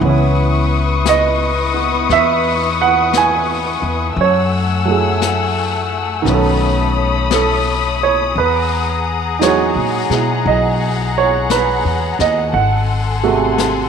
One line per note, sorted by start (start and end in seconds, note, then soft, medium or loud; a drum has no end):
0.00 2.05 C#2 medium
0.00 4.15 E3 soft
0.00 1.73 B3 soft
0.00 4.13 E4 soft
0.00 4.13 B4 medium
0.00 4.13 C#6 medium
0.00 4.13 D#6 medium
0.00 brush sweep soft
0.05 4.19 C#4 soft
0.05 4.20 E4 medium
1.06 2.07 D#5 medium
1.06 brush sweep soft
1.06 snare soft
1.06 hi-hat pedal medium
1.74 4.17 B3 soft
2.09 3.78 E2 medium
2.09 2.76 E5 medium
2.09 brush sweep soft
2.09 snare soft
2.81 3.16 F#5 medium
3.13 brush sweep soft
3.13 snare soft
3.13 hi-hat pedal soft
3.17 4.22 G#5 medium
3.82 4.15 E2 soft
4.16 6.21 F#2 medium
4.16 8.32 A3 medium
4.16 6.24 F#5 soft
4.16 6.24 G#5 soft
4.16 6.24 E6 medium
4.16 brush sweep soft
4.21 7.28 C#5 medium
4.85 6.25 F#3 soft
4.85 6.26 A3 soft
4.85 6.27 E4 soft
4.90 6.28 G#4 soft
5.22 brush sweep soft
5.22 snare soft
5.22 hi-hat pedal medium
6.22 8.32 B1 medium
6.22 8.35 D#3 soft
6.22 8.36 B3 soft
6.22 brush sweep soft
6.22 snare soft
6.26 8.38 C#4 soft
6.26 8.35 C#5 soft
6.26 8.35 B5 medium
6.26 10.42 D#6 medium
6.33 7.32 A4 medium
7.31 7.98 A4 medium
7.31 brush sweep soft
7.31 snare soft
7.31 hi-hat pedal soft
8.03 8.38 C#5 medium
8.36 9.72 E2 medium
8.36 12.50 G#4 medium
8.36 9.38 B4 medium
8.36 13.89 F#5 soft
8.36 12.50 A#5 soft
8.36 brush sweep soft
9.39 12.55 F#3 soft
9.39 10.09 G#3 soft
9.39 12.53 D#4 soft
9.39 10.50 C#5 medium
9.39 brush sweep soft
9.39 snare soft
9.39 hi-hat pedal soft
9.44 12.55 F#4 medium
9.75 10.08 A#2 soft
10.10 10.43 B2 medium
10.10 12.54 G#3 soft
10.10 12.55 E4 soft
10.10 snare soft
10.46 11.81 B1 medium
10.46 11.18 D#5 medium
10.46 brush sweep soft
11.18 11.49 C#5 medium
11.50 12.16 B4 medium
11.50 brush sweep soft
11.50 snare soft
11.50 hi-hat pedal soft
11.85 12.17 E2 soft
12.19 12.51 D#2 medium
12.19 12.56 D#5 medium
12.19 snare soft
12.53 13.89 G#1 medium
12.53 13.89 A4 soft
12.53 13.89 F#5 medium
12.53 13.89 G#5 soft
12.53 13.89 C6 medium
12.53 brush sweep soft
13.23 13.89 C3 soft
13.23 13.89 G#3 soft
13.23 13.89 A3 soft
13.23 13.89 F#4 soft
13.58 brush sweep soft
13.58 snare soft
13.58 hi-hat pedal soft